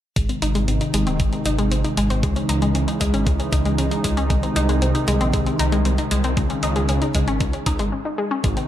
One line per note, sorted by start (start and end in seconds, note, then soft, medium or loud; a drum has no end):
0.16 0.28 G#1 medium
0.16 2.21 C3 medium
0.16 2.21 D#3 medium
0.16 0.27 G#3 medium
0.16 7.88 G#3 medium
0.16 2.21 D#4 medium
0.16 kick loud
0.16 closed hi-hat medium
0.29 0.40 C4 medium
0.29 closed hi-hat soft
0.42 0.54 G#1 medium
0.42 0.49 D#4 loud
0.42 closed hi-hat medium
0.55 0.66 G#1 medium
0.55 0.66 G#3 medium
0.55 closed hi-hat soft
0.68 0.79 G#1 medium
0.68 0.80 C4 medium
0.68 closed hi-hat medium
0.81 0.87 D#4 medium
0.81 closed hi-hat soft
0.94 1.05 G#1 medium
0.94 1.06 G#3 medium
0.94 closed hi-hat medium
1.07 1.18 D#1 medium
1.07 1.19 C4 medium
1.07 closed hi-hat soft
1.20 1.31 G#1 medium
1.20 1.31 G#3 medium
1.20 kick loud
1.20 closed hi-hat medium
1.33 1.44 C4 medium
1.33 closed hi-hat soft
1.45 1.57 G#1 medium
1.45 1.52 D#4 loud
1.45 closed hi-hat medium
1.58 1.70 G#1 medium
1.58 1.69 G#3 loud
1.58 closed hi-hat soft
1.71 1.83 G#1 medium
1.71 1.84 C4 medium
1.71 closed hi-hat medium
1.84 1.91 D#4 medium
1.84 closed hi-hat soft
1.97 2.09 G#1 medium
1.97 2.10 G#3 medium
1.97 closed hi-hat medium
2.10 2.22 G#1 medium
2.10 2.23 C4 medium
2.10 closed hi-hat soft
2.23 2.35 C#2 loud
2.23 4.28 C#3 medium
2.23 4.28 E3 medium
2.23 2.34 G#3 medium
2.23 7.88 D#4 medium
2.23 kick loud
2.23 closed hi-hat medium
2.36 2.47 C#4 medium
2.36 closed hi-hat soft
2.49 2.60 C#2 medium
2.49 2.56 D#4 medium
2.49 closed hi-hat medium
2.62 2.73 C#2 medium
2.62 2.73 G#3 loud
2.62 closed hi-hat soft
2.75 2.86 C#2 medium
2.75 2.87 C#4 medium
2.75 closed hi-hat medium
2.88 2.94 D#4 medium
2.88 closed hi-hat soft
3.01 3.12 C#2 medium
3.01 3.13 G#3 medium
3.01 kick medium
3.01 closed hi-hat medium
3.14 3.25 G#1 medium
3.14 3.26 C#4 loud
3.14 closed hi-hat soft
3.27 3.38 C#2 loud
3.27 3.38 G#3 medium
3.27 kick loud
3.27 closed hi-hat medium
3.40 3.50 C#4 medium
3.40 closed hi-hat soft
3.52 3.64 C#2 medium
3.52 3.59 D#4 medium
3.52 kick loud
3.52 closed hi-hat medium
3.65 3.77 C#2 medium
3.65 3.76 G#3 loud
3.65 closed hi-hat soft
3.78 3.90 C#2 medium
3.78 3.91 C#4 medium
3.78 closed hi-hat medium
3.91 3.98 D#4 medium
3.91 closed hi-hat soft
4.04 4.16 C#2 loud
4.04 4.17 G#3 loud
4.04 kick medium
4.04 closed hi-hat medium
4.17 4.29 C#2 medium
4.17 4.29 C#4 loud
4.17 closed hi-hat soft
4.30 4.42 C2 medium
4.30 6.35 C3 medium
4.30 7.88 D#3 medium
4.30 4.41 G#3 medium
4.30 kick loud
4.30 closed hi-hat medium
4.43 4.54 C4 medium
4.43 closed hi-hat soft
4.56 4.67 C2 medium
4.56 4.62 D#4 loud
4.56 closed hi-hat medium
4.69 4.80 C2 medium
4.69 4.80 G#3 loud
4.69 closed hi-hat soft
4.82 4.93 C2 medium
4.82 4.94 C4 medium
4.82 closed hi-hat medium
4.95 5.01 D#4 medium
4.95 closed hi-hat soft
5.08 5.19 C2 medium
5.08 5.20 G#3 loud
5.08 closed hi-hat medium
5.21 5.32 A#1 medium
5.21 5.33 C4 loud
5.21 closed hi-hat soft
5.33 5.45 C2 loud
5.33 5.44 G#3 medium
5.33 kick loud
5.33 closed hi-hat medium
5.46 5.57 C4 medium
5.46 closed hi-hat soft
5.59 5.71 C2 medium
5.59 5.66 D#4 loud
5.59 closed hi-hat medium
5.72 5.84 C2 medium
5.72 5.83 G#3 medium
5.72 closed hi-hat soft
5.85 5.97 C2 medium
5.85 5.98 C4 medium
5.85 closed hi-hat medium
5.98 6.05 D#4 medium
5.98 closed hi-hat soft
6.11 6.23 C2 medium
6.11 6.23 G#3 loud
6.11 closed hi-hat medium
6.24 6.36 C2 medium
6.24 6.36 C4 medium
6.24 closed hi-hat soft
6.37 6.48 C#2 loud
6.37 7.91 C#3 medium
6.37 6.48 G#3 medium
6.37 kick loud
6.37 closed hi-hat medium
6.50 6.61 C#4 medium
6.50 closed hi-hat soft
6.63 6.74 C#2 medium
6.63 6.69 D#4 loud
6.63 closed hi-hat medium
6.76 6.87 C#2 medium
6.76 6.87 G#3 loud
6.76 closed hi-hat soft
6.89 7.00 C#2 loud
6.89 7.01 C#4 medium
6.89 closed hi-hat medium
7.02 7.08 D#4 medium
7.02 closed hi-hat soft
7.15 7.26 C#2 medium
7.15 7.27 G#3 loud
7.15 kick medium
7.15 closed hi-hat medium
7.28 7.39 G#1 medium
7.28 7.40 C#4 loud
7.28 closed hi-hat soft
7.40 7.52 C#2 loud
7.40 7.51 G#3 medium
7.40 kick loud
7.40 closed hi-hat medium
7.53 7.64 C#4 medium
7.53 closed hi-hat soft
7.66 7.78 C#2 medium
7.66 7.73 D#4 loud
7.66 kick loud
7.66 closed hi-hat medium
7.79 7.91 G#1 medium
7.79 7.90 G#3 loud
7.79 closed hi-hat soft
7.92 8.05 C#4 medium
8.05 8.12 D#4 medium
8.18 8.30 G#3 loud
8.31 8.43 C#4 loud
8.44 8.55 G#1 loud
8.44 8.68 C3 medium
8.44 8.68 D#3 medium
8.44 8.68 G#3 medium
8.44 8.55 G#3 medium
8.44 8.68 D#4 medium
8.44 kick loud
8.44 closed hi-hat medium
8.57 8.68 C4 medium
8.57 closed hi-hat soft